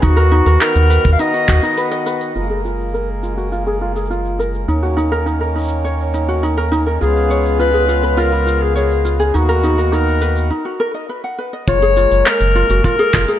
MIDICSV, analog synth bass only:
0, 0, Header, 1, 2, 480
1, 0, Start_track
1, 0, Key_signature, 6, "major"
1, 0, Tempo, 582524
1, 21, Time_signature, 4, 2, 24, 8
1, 11035, End_track
2, 0, Start_track
2, 0, Title_t, "Analog synth bass"
2, 0, Program_c, 0, 38
2, 25, Note_on_c, 0, 39, 96
2, 343, Note_off_c, 0, 39, 0
2, 379, Note_on_c, 0, 39, 85
2, 475, Note_off_c, 0, 39, 0
2, 623, Note_on_c, 0, 39, 93
2, 811, Note_off_c, 0, 39, 0
2, 865, Note_on_c, 0, 39, 97
2, 958, Note_off_c, 0, 39, 0
2, 1224, Note_on_c, 0, 39, 93
2, 1317, Note_off_c, 0, 39, 0
2, 1939, Note_on_c, 0, 30, 72
2, 3836, Note_off_c, 0, 30, 0
2, 3855, Note_on_c, 0, 39, 76
2, 5754, Note_off_c, 0, 39, 0
2, 5781, Note_on_c, 0, 37, 84
2, 7677, Note_off_c, 0, 37, 0
2, 7700, Note_on_c, 0, 39, 82
2, 8661, Note_off_c, 0, 39, 0
2, 9619, Note_on_c, 0, 30, 97
2, 9940, Note_off_c, 0, 30, 0
2, 9981, Note_on_c, 0, 30, 84
2, 10076, Note_off_c, 0, 30, 0
2, 10221, Note_on_c, 0, 30, 98
2, 10411, Note_off_c, 0, 30, 0
2, 10461, Note_on_c, 0, 30, 91
2, 10556, Note_off_c, 0, 30, 0
2, 10826, Note_on_c, 0, 30, 86
2, 10918, Note_off_c, 0, 30, 0
2, 11035, End_track
0, 0, End_of_file